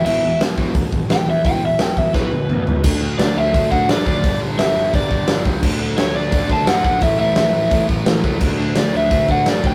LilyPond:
<<
  \new Staff \with { instrumentName = "Overdriven electric guitar" } { \time 4/4 \key d \major \tempo 4 = 172 e''4 r2 g''8 e''8 | g''8 e''8 g''8 e''8 b'2 | r4 d''8 e''4 fis''8 d''8 d''8~ | d''8 r8 e''4 d''4. r8 |
r4 cis''8 d''4 a''8 fis''8 fis''8 | e''8 e''2 r4. | r4 d''8 e''4 fis''8 d''8 g''8 | }
  \new Staff \with { instrumentName = "Overdriven electric guitar" } { \clef bass \time 4/4 \key d \major <e, b, e>8 <e, b,>8 <e, b,>8 <e, b, e>8 <e, b,>8 <e, b,>8 <e, b,>8 <e, b,>8 | <e, b, e>8 <e, b,>8 <e, b,>8 <e, b,>8 <e, b, e>8 <e, b,>8 <e, b,>8 <e, b,>8 | <d a d'>8 <d a d'>8 <d a d'>8 <d a d'>8 <d a d'>8 <d a d'>8 <d a d'>8 <d a d'>8 | <g, d g>8 <g, d g>8 <g, d g>8 <g, d g>8 <g, d g>8 <g, d g>8 <g, d g>8 <g, d g>8 |
<d a d'>8 <d a d'>8 <d a d'>8 <d a d'>8 <d a d'>8 <d a d'>8 <d a d'>8 <d a d'>8 | <a, e a>8 <a, e a>8 <a, e a>8 <a, e a>8 <a, e a>8 <a, e a>8 <a, e a>8 <a, e a>8 | <d a d'>8 <d a d'>8 <d a d'>8 <d a d'>8 <d a d'>8 <d a d'>8 <d a d'>8 <d a d'>8 | }
  \new Staff \with { instrumentName = "Picked electric bass" } { \clef bass \time 4/4 \key d \major e,,8 e,,8 e,,8 e,,8 d,8 gis,,8 a,,8 e,8 | e,,8 e,,8 e,,8 e,,8 b,,8 e,,8 d,8 cis,8 | d,4 d,8 d,8 d,8 d,8 g,8 d,8 | g,,8 g,,8 g,,8 g,,8 g,,4 g,,8 cis,8 |
d,4 d,8 d,8 d,8 d,8 g,8 b,,8 | a,,8 a,,8 a,,8 a,,8 a,,4 a,,8 cis,8 | d,4 d,8 d,8 d,8 d,8 g,8 d,8 | }
  \new DrumStaff \with { instrumentName = "Drums" } \drummode { \time 4/4 cymc4 <hho sn>8 bd8 <hho bd>8 bd8 <hho sn>4 | <hho bd>4 <hho sn>8 bd8 <bd sn>8 tommh8 toml8 tomfh8 | <cymc bd>4 <hho sn>4 <hho bd>8 bd8 <hho sn>8 bd8 | <hho bd>4 <hho sn>4 <hho bd>8 bd8 <hho sn>8 bd8 |
<cymc bd>4 <hho sn>4 <hho bd>8 bd8 <hho sn>8 bd8 | <hho bd>4 <hho sn>4 <hho bd>8 bd8 <hho sn>8 bd8 | <cymc bd>4 <hho sn>4 <hho bd>8 bd8 <hho sn>8 bd8 | }
>>